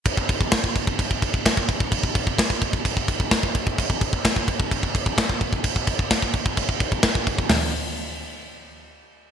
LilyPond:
\new DrumStaff \with { instrumentName = "Drums" } \drummode { \time 4/4 \tempo 4 = 129 <cymc bd>16 bd16 <cymc bd>16 bd16 <cymc bd sn>16 bd16 <cymc bd>16 bd16 <cymc bd>16 bd16 <cymc bd>16 bd16 <cymc bd sn>16 bd16 <cymc bd>16 bd16 | <cymc bd>16 bd16 <cymc bd>16 bd16 <cymc bd sn>16 bd16 <cymc bd>16 bd16 <cymc bd>16 bd16 <cymc bd>16 bd16 <cymc bd sn>16 bd16 <cymc bd>16 bd16 | <cymc bd>16 bd16 <cymc bd>16 bd16 <cymc bd sn>16 bd16 <cymc bd>16 bd16 <cymc bd>16 bd16 <cymc bd>16 bd16 <cymc bd sn>16 bd16 <cymc bd>16 bd16 | <cymc bd>16 bd16 <cymc bd>16 bd16 <cymc bd sn>16 bd16 <cymc bd>16 bd16 <cymc bd>16 bd16 <cymc bd>16 bd16 <cymc bd sn>16 bd16 <cymc bd>16 bd16 |
<hho sn tomfh>4 r4 r4 r4 | }